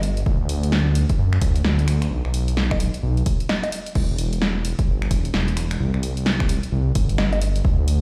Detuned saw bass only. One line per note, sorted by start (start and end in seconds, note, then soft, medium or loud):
0.00 0.23 G1 medium
0.26 0.38 D2 loud
0.40 1.05 D2 loud
1.19 1.38 F#2 medium
1.42 1.61 D2 medium
1.65 2.08 D2 loud
2.10 2.22 B1 loud
2.25 2.90 B1 loud
3.03 3.23 B1 loud
3.95 4.07 E1 loud
4.09 4.74 E1 loud
4.88 5.07 G1 medium
5.11 5.30 E1 medium
5.34 5.77 E1 loud
5.80 5.91 C2 loud
5.94 6.59 C2 loud
6.72 6.92 C2 loud
6.95 7.62 G1 loud
7.65 7.76 D2 loud
7.79 8.01 D2 loud